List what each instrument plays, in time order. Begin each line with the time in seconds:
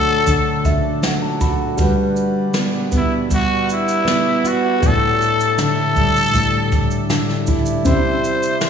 Already playing: steel-string acoustic guitar D3 F#3 A3, harmonium D3 D4 F#4 A4, upright piano F#4 C#5 D5, trumpet A4
0.27 steel-string acoustic guitar D3, kick, shaker
0.65 upright piano E5, kick, shaker
1.02 steel-string acoustic guitar F#3, upright piano F#5, snare, shaker
1.22 upright piano A5
1.41 steel-string acoustic guitar F#4, upright piano B5, kick, shaker
1.77 upright piano G3 F#4, steel-string acoustic guitar G3, harmonium G3 D4 F#4 B4, kick, shaker
1.81 upright piano B4
2.16 shaker
2.54 steel-string acoustic guitar B3, snare, shaker
2.92 steel-string acoustic guitar B3, kick, shaker
2.97 trumpet E4
3.29 steel-string acoustic guitar G3, kick, shaker
3.34 trumpet F#4
3.69 trumpet E4, shaker
3.88 shaker
4.05 steel-string acoustic guitar B3, snare, shaker
4.44 steel-string acoustic guitar F#4, trumpet F#4, shaker
4.80 steel-string acoustic guitar A2, harmonium G3 D4 E4 A4, upright piano A3 G4, kick, shaker
4.84 trumpet A4, upright piano D5
5.22 shaker
5.41 shaker
5.58 steel-string acoustic guitar D3, snare, shaker
5.63 trumpet A4
5.95 steel-string acoustic guitar G3, kick, shaker
6.16 shaker
6.34 steel-string acoustic guitar A2, kick, shaker
6.72 kick, shaker
6.91 shaker
7.10 steel-string acoustic guitar D3, snare, shaker
7.29 snare
7.47 steel-string acoustic guitar E4, kick, shaker
7.66 shaker
7.84 steel-string acoustic guitar C3, upright piano C4 B5, harmonium C4 G4, trumpet C5, kick, shaker
7.89 upright piano E5
8.24 shaker
8.43 shaker
8.61 steel-string acoustic guitar E3, trumpet C5, snare, shaker